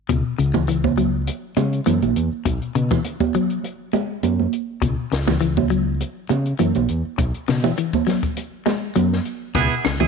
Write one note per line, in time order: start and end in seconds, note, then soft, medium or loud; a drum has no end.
0.09 0.22 C#2 medium
0.09 0.32 B2 medium
0.09 kick medium
0.09 closed hi-hat medium
0.09 high conga soft
0.38 1.28 C#2 medium
0.38 0.51 C#3 medium
0.38 closed hi-hat soft
0.54 0.65 E3 medium
0.54 kick medium
0.54 high conga medium
0.68 0.91 E3 medium
0.68 closed hi-hat medium
0.68 high conga soft
0.84 kick medium
0.84 high conga medium
0.97 1.21 F#3 medium
0.97 closed hi-hat soft
0.97 high conga medium
1.27 closed hi-hat medium
1.27 high conga soft
1.57 1.79 C#3 medium
1.57 1.80 G#3 medium
1.57 closed hi-hat soft
1.57 high conga medium
1.73 closed hi-hat soft
1.86 1.99 F#2 medium
1.86 2.09 E3 medium
1.86 closed hi-hat medium
1.86 high conga medium
2.02 2.13 B1 medium
2.02 closed hi-hat soft
2.02 high conga medium
2.16 2.28 E2 medium
2.16 closed hi-hat medium
2.33 muted fingered electric bass stroke soft
2.45 2.58 B1 medium
2.45 2.69 B2 medium
2.45 kick medium
2.45 closed hi-hat medium
2.45 high conga soft
2.62 closed hi-hat soft
2.75 2.98 B2 medium
2.75 2.88 C#3 medium
2.75 closed hi-hat soft
2.91 3.02 E3 medium
2.91 kick medium
2.91 high conga medium
3.04 closed hi-hat medium
3.04 high conga soft
3.20 kick medium
3.20 closed hi-hat soft
3.20 high conga medium
3.34 3.58 F#3 medium
3.34 closed hi-hat soft
3.34 high conga medium
3.50 closed hi-hat soft
3.64 closed hi-hat medium
3.64 high conga soft
3.93 4.16 G#3 medium
3.93 closed hi-hat soft
3.93 high conga medium
4.23 4.45 F#2 medium
4.23 closed hi-hat medium
4.23 high conga medium
4.39 high conga medium
4.53 closed hi-hat soft
4.82 4.94 C#2 medium
4.82 5.05 B2 medium
4.82 kick medium
4.82 closed hi-hat medium
4.82 high conga soft
5.12 6.01 C#2 medium
5.12 muted clean electric guitar stroke medium
5.12 snare medium
5.12 closed hi-hat soft
5.28 5.38 E3 medium
5.28 kick soft
5.28 snare soft
5.28 high conga medium
5.41 5.64 E3 medium
5.41 closed hi-hat medium
5.41 high conga soft
5.57 kick medium
5.57 high conga medium
5.70 5.94 F#3 medium
5.70 closed hi-hat soft
6.00 closed hi-hat medium
6.00 high conga soft
6.29 6.52 C#3 medium
6.29 muted clean electric guitar stroke medium
6.29 closed hi-hat soft
6.29 high conga medium
6.45 closed hi-hat soft
6.59 6.72 F#2 medium
6.59 6.82 E3 medium
6.59 closed hi-hat medium
6.59 high conga medium
6.75 6.86 B1 medium
6.75 closed hi-hat soft
6.75 high conga medium
6.88 7.01 E2 medium
6.88 closed hi-hat soft
7.05 muted fingered electric bass stroke soft
7.18 7.31 B1 medium
7.18 muted clean electric guitar stroke medium
7.18 kick medium
7.18 closed hi-hat medium
7.18 high conga soft
7.34 closed hi-hat soft
7.48 7.71 B2 medium
7.48 7.60 C#3 medium
7.48 snare medium
7.48 closed hi-hat soft
7.64 7.75 E3 medium
7.64 high conga medium
7.77 8.01 E3 medium
7.77 closed hi-hat medium
7.77 high conga soft
7.93 kick medium
7.93 closed hi-hat soft
7.93 high conga medium
8.07 8.30 F#3 medium
8.07 snare soft
8.07 closed hi-hat soft
8.07 high conga medium
8.23 kick medium
8.23 closed hi-hat soft
8.37 closed hi-hat medium
8.37 high conga soft
8.66 8.89 G#3 medium
8.66 snare soft
8.66 closed hi-hat soft
8.66 high conga medium
8.96 9.18 F#2 medium
8.96 9.19 F#3 medium
8.96 closed hi-hat medium
8.96 high conga medium
9.13 snare soft
9.25 closed hi-hat soft
9.55 9.67 C#2 medium
9.55 9.78 B2 medium
9.55 9.73 B3 medium
9.55 9.74 E4 medium
9.55 9.74 G#4 medium
9.55 kick medium
9.55 snare soft
9.55 closed hi-hat medium
9.55 high conga soft
9.84 10.08 C#2 medium
9.84 9.97 C#3 medium
9.84 snare medium
9.84 closed hi-hat soft
9.84 claves medium
10.00 10.08 E3 medium
10.00 10.08 E4 soft
10.00 10.08 G#4 medium
10.00 kick medium
10.00 high conga medium